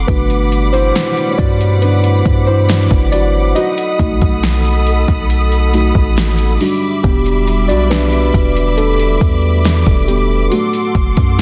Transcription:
Already playing: string section F#5 D6
0.07 808-style bass G1, synth keys B2 A3 D4 F#4 B4, string section G3 B5, kick, closed hi-hat
0.30 closed hi-hat
0.52 closed hi-hat
0.73 synth keys E4 C5, closed hi-hat
0.95 snare, closed hi-hat
1.17 closed hi-hat
1.31 synth keys C#5
1.38 808-style bass G2, synth keys F#4 D5, kick, closed hi-hat
1.61 closed hi-hat
1.81 synth keys D4 B4, closed hi-hat
2.04 closed hi-hat
2.26 808-style bass G2, kick, closed hi-hat
2.46 synth keys E4 C5
2.69 snare, closed hi-hat
2.90 808-style bass G1, kick, closed hi-hat
3.12 synth keys F#4 D5, closed hi-hat
3.55 synth keys F#4 D#5, string section A4 B5 D#6, closed hi-hat
3.78 closed hi-hat
3.99 808-style bass B1, synth keys A3 D#4 F#4, kick, closed hi-hat
4.21 808-style bass B1, kick, closed hi-hat
4.43 snare, closed hi-hat
4.65 closed hi-hat
4.87 closed hi-hat
5.08 808-style bass B1, kick, closed hi-hat
5.30 closed hi-hat
5.52 closed hi-hat
5.73 synth keys A3 D#4 F#4, closed hi-hat
5.95 808-style bass A1, kick
6.17 snare, closed hi-hat
6.39 closed hi-hat
6.60 synth keys G3 D4 F#4, string section G3 E5 B5 D6, open hi-hat
7.03 808-style bass E1, synth keys B3 G4, kick, closed hi-hat
7.26 closed hi-hat
7.47 closed hi-hat
7.68 808-style bass B1, synth keys F#4 D5, closed hi-hat
7.90 synth keys D4 B4, snare, closed hi-hat
8.13 closed hi-hat
8.34 808-style bass E1, kick, closed hi-hat
8.56 closed hi-hat
8.77 synth keys D4 A4, closed hi-hat
8.99 closed hi-hat
9.21 808-style bass E2, kick, closed hi-hat
9.65 snare, closed hi-hat
9.86 808-style bass E1, kick, closed hi-hat
10.07 synth keys B3 G4, closed hi-hat
10.51 synth keys A3 F#4, string section A4 F#5 C6, closed hi-hat
10.73 closed hi-hat
10.95 808-style bass F#1, kick, closed hi-hat
11.17 808-style bass F#2, kick, closed hi-hat
11.39 closed hi-hat

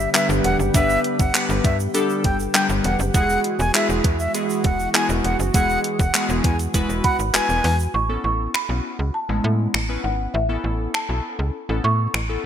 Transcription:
Already playing: analog synth pad D3 G3 B3 G4
0.00 shaker
0.14 synth keys G3 B3 D4 G4 B4, flute E5, clap, closed hi-hat, shaker
0.29 fm bass G1, shaker
0.44 fm bass E1, flute F#5, closed hi-hat
0.59 fm bass F#1, shaker
0.74 fm bass G1, synth keys G3 B3 D4 G4 B4, flute E5, kick, closed hi-hat, shaker
0.90 shaker
1.04 closed hi-hat
1.19 fm bass G1, flute F#5, kick, shaker
1.34 synth keys G3 B3 D4 G4 B4, clap, closed hi-hat, shaker
1.49 fm bass G1, shaker
1.64 fm bass G2, flute E5, kick, closed hi-hat
1.80 shaker
1.94 synth keys G3 B3 D4 G4 A4, closed hi-hat, shaker
2.10 shaker
2.24 fm bass G1, flute G5, kick, closed hi-hat
2.40 shaker
2.54 synth keys G3 B3 D4 G4 B4, flute G5, clap, closed hi-hat, shaker
2.69 fm bass G1, shaker
2.84 fm bass E1, flute F#5, closed hi-hat
2.99 fm bass F#1, shaker
3.14 fm bass E1, analog synth pad E3 G#3 F#4, synth keys G#3 B3 E4 F#4 G#4, flute F#5, kick, closed hi-hat, shaker
3.29 shaker
3.44 closed hi-hat
3.59 fm bass E1, flute G#5, shaker
3.74 synth keys G#3 B3 E4 F#4 G#4, flute E5, clap, closed hi-hat, shaker
3.89 fm bass E1, shaker
4.04 fm bass E2, kick, closed hi-hat
4.19 flute E5, shaker
4.34 synth keys G#3 B3 E4 F#4 G#4, closed hi-hat, shaker
4.50 shaker
4.64 fm bass E1, flute F#5, kick, closed hi-hat
4.79 shaker
4.94 synth keys G#3 B3 E4 F#4 G#4, flute G#5, clap, closed hi-hat, shaker
5.09 fm bass E1, shaker
5.24 fm bass E1, flute F#5, closed hi-hat
5.39 fm bass F#1, shaker
5.54 fm bass E1, synth keys G#3 B3 E4 F#4 G#4, flute F#5, kick, closed hi-hat, shaker
5.70 shaker
5.84 closed hi-hat
5.99 fm bass E1, flute F#5, kick, shaker
6.14 synth keys G#3 B3 E4 F#4 G#4, clap, closed hi-hat, shaker
6.29 fm bass E1, shaker
6.44 fm bass E2, flute G#5, kick, closed hi-hat
6.59 closed hi-hat, shaker
6.74 fm bass E1, synth keys G#3 B3 E4 F#4 B4, kick, closed hi-hat, shaker
6.89 fm bass E1, shaker
7.04 flute F#5, marimba B5, kick, closed hi-hat
7.19 fm bass G#1, shaker
7.34 fm bass E1, synth keys G#3 B3 E4 F#4 B4, flute G#5, clap, closed hi-hat, shaker
7.49 fm bass E1, shaker
7.64 fm bass E2, open hi-hat
7.79 shaker
7.94 fm bass A1, marimba C#6
8.09 synth keys B3 C#4 E4 A4
8.24 fm bass A1, marimba C#6
8.54 marimba B5, finger snap
8.69 fm bass B1, synth keys B3 C#4 E4 F#4
8.99 fm bass C#2
9.14 marimba A5
9.29 fm bass A1, synth keys G#3 B3 C#4 E4
9.44 fm bass A2
9.74 fm bass A1, finger snap
9.89 synth keys B3 C#4 E4 B4
10.04 fm bass G#1, marimba F#5
10.34 fm bass A1, marimba E5
10.49 synth keys B3 C#4 E4 A4
10.64 fm bass A1
10.94 marimba A5, finger snap
11.09 fm bass B1, synth keys B3 C#4 E4 A4
11.39 fm bass C#2
11.69 fm bass A1, synth keys B3 C#4 E4 A4
11.84 fm bass A2, marimba C#6
12.14 fm bass A1, finger snap
12.29 synth keys B3 C#4 E4 A4

